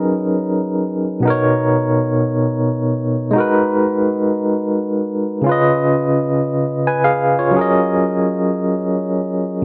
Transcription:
0.00 1.18 F#3 medium
0.00 1.19 C#4 medium
0.00 1.21 D#4 medium
0.00 1.22 G#4 medium
0.00 1.23 A#4 medium
1.20 3.28 B2 medium
1.20 3.30 B3 medium
1.25 3.31 D#4 medium
1.25 3.32 A#4 medium
1.30 3.33 C#5 medium
3.31 5.39 G#3 medium
3.31 5.40 D#4 medium
3.36 5.41 F#4 medium
3.36 5.43 A#4 medium
3.40 5.44 B4 medium
5.41 7.50 C#3 medium
5.41 7.51 C#4 medium
5.46 6.83 F4 medium
5.46 6.84 B4 medium
5.51 6.86 D#5 medium
6.87 7.03 B4 soft
6.87 7.03 G#5 medium
7.04 7.37 G#4 soft
7.04 7.37 F5 medium
7.39 7.72 F4 soft
7.39 7.72 C#5 medium
7.51 9.60 F#3 medium
7.51 9.61 C#4 medium
7.56 9.62 G#4 medium
7.56 9.63 A#4 medium
7.61 9.65 D#5 medium

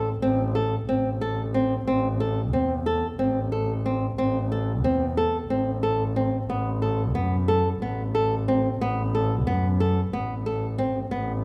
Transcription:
0.00 0.17 A1 medium
0.22 0.84 A1 medium
0.22 0.42 C4 medium
0.55 0.74 A4 medium
0.87 1.83 A1 medium
0.87 1.08 C4 medium
1.21 1.41 A4 medium
1.54 1.74 C4 medium
1.86 2.54 A1 medium
1.86 2.07 C4 medium
2.20 2.40 A4 medium
2.52 3.15 E2 medium
2.52 2.73 C4 medium
2.86 3.06 A4 medium
3.19 4.14 A1 medium
3.19 3.39 C4 medium
3.52 3.72 A4 medium
3.86 4.05 C4 medium
4.18 4.85 A1 medium
4.18 4.38 C4 medium
4.52 4.71 A4 medium
4.83 5.46 E2 medium
4.83 5.04 C4 medium
5.17 5.37 A4 medium
5.50 6.45 A1 medium
5.50 5.70 C4 medium
5.83 6.03 A4 medium
6.16 6.36 C4 medium
6.49 7.17 A1 medium
6.49 6.69 B3 medium
6.82 7.02 A4 medium
7.15 7.78 F#2 medium
7.15 7.35 B3 medium
7.48 7.68 A4 medium
7.81 8.77 A1 medium
7.81 8.01 B3 medium
8.15 8.34 A4 medium
8.48 8.68 C4 medium
8.80 9.48 A1 medium
8.80 9.01 B3 medium
9.15 9.34 A4 medium
9.46 10.09 F#2 medium
9.46 9.66 B3 medium
9.80 10.00 A4 medium
10.13 11.08 A1 medium
10.13 10.33 B3 medium
10.46 10.66 A4 medium
10.78 10.98 C4 medium
11.11 11.44 A1 medium
11.11 11.31 B3 medium

